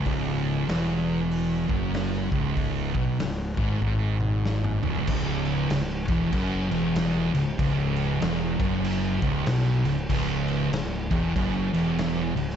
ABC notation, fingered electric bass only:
X:1
M:4/4
L:1/8
Q:"Swing" 1/4=96
K:C#m
V:1 name="Fingered electric bass" clef=bass
C,,,2 E,,,3 F,,,2 C,,,- | C,,, B,,, C,,, G,,, G,,,3 C,,, | C,,,2 C,,, E,,, F,,, E,,,2 C,,, | C,,,2 E,,, F,,,2 C,,, B,,, C,,, |
C,,,2 C,,, E,,, F,,, E,,,2 C,,, |]